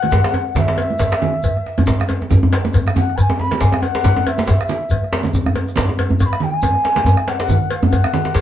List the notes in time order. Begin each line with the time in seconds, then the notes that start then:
Already playing: F#5
0.03 cowbell, high conga, low conga
0.11 bombo low, djembe slap, djembe tone, djembe bass, shekere
0.24 bombo rim, djembe slap
0.34 cowbell, djembe slap, djembe tone
0.55 E5, bombo rim, bombo low, djembe slap, djembe tone, high conga, djembe bass, low conga, shekere
0.68 djembe slap
0.77 E5, cowbell, djembe slap, djembe tone, high conga, shekere
0.90 high conga
0.99 bombo rim, bombo low, cowbell, djembe slap, djembe tone, djembe bass, shekere
1.12 bombo rim, djembe slap
1.22 djembe slap, djembe tone, low conga
1.34 bombo rim
1.43 bombo low, cowbell, djembe tone, djembe bass, shekere
1.56 bombo rim, high conga
1.66 bombo rim, djembe slap
1.78 cowbell, high conga, low conga, djembe bass
1.87 bombo low, djembe slap, djembe tone, djembe bass, shekere
2.00 bombo rim, djembe tone
2.09 cowbell, djembe slap, djembe tone
2.22 djembe tone
2.31 bombo rim, bombo low, high conga, djembe tone, low conga, djembe bass, shekere
2.43 djembe bass
2.53 cowbell, djembe slap, high conga, shekere
2.65 djembe tone, high conga
2.74 bombo rim, bombo low, cowbell, djembe tone, djembe bass, shekere
2.86 bombo rim, djembe tone
2.95 F#5, bombo rim, djembe slap, djembe bass, low conga
3.10 bombo rim
3.16 B5, bombo low, cowbell, djembe tone, djembe bass, shekere
3.21 G#5
3.30 bombo rim, djembe tone
3.39 B5, bombo rim, djembe slap, djembe tone
3.51 cowbell, djembe slap, high conga, low conga
3.60 G#5, bombo low, djembe slap, djembe tone, djembe bass, shekere
3.72 bombo rim, djembe tone
3.81 F#5, cowbell, djembe slap, djembe tone
3.95 djembe slap
4.04 bombo low, djembe slap, djembe tone, low conga, djembe bass, shekere
4.16 djembe tone, high conga
4.25 E5 F#5, cowbell, djembe slap, djembe tone, high conga, shekere
4.38 bombo rim, djembe slap, high conga
4.47 E5, bombo low, cowbell, djembe slap, high conga, djembe tone, djembe bass, shekere
4.59 bombo rim, shekere
4.68 bombo rim, djembe slap, high conga, low conga, shekere
4.83 djembe slap
4.90 bombo low, cowbell, djembe tone, djembe bass, shekere
5.03 bombo rim, high conga
5.12 djembe slap, high conga
5.23 bombo rim, high conga, djembe tone, low conga, shekere
5.33 bombo low, djembe slap, high conga, djembe tone, djembe bass, shekere
5.46 bombo rim, djembe bass
5.55 cowbell, djembe slap, high conga, djembe tone
5.68 bombo rim, shekere
5.76 bombo rim, bombo low, djembe slap, high conga, djembe tone, low conga, djembe bass, shekere
5.89 djembe tone
5.98 cowbell, djembe slap, high conga, djembe tone, shekere
6.10 high conga, djembe bass
6.20 C#6, bombo rim, bombo low, cowbell, djembe tone, djembe bass, shekere
6.25 B5
6.33 bombo rim
6.40 G5, bombo rim, djembe slap, low conga
6.54 G#5, bombo rim
6.62 bombo low, cowbell, djembe tone, djembe bass, shekere
6.75 bombo rim, high conga
6.84 bombo rim, djembe slap
6.96 cowbell, djembe slap, high conga, low conga
7.05 bombo low, djembe tone, djembe bass, shekere
7.17 bombo rim
7.28 F#5, cowbell, djembe slap
7.40 djembe slap
7.49 bombo rim, bombo low, djembe tone, high conga, djembe bass, low conga, shekere
7.70 F#5, cowbell, djembe slap, high conga
7.83 high conga, djembe bass
7.92 bombo rim, bombo low, cowbell, djembe tone, djembe bass, shekere
8.04 bombo rim, djembe tone
8.13 bombo rim, djembe slap, low conga
8.25 bombo rim, djembe slap
8.35 bombo low, cowbell, djembe slap, djembe tone, djembe bass, shekere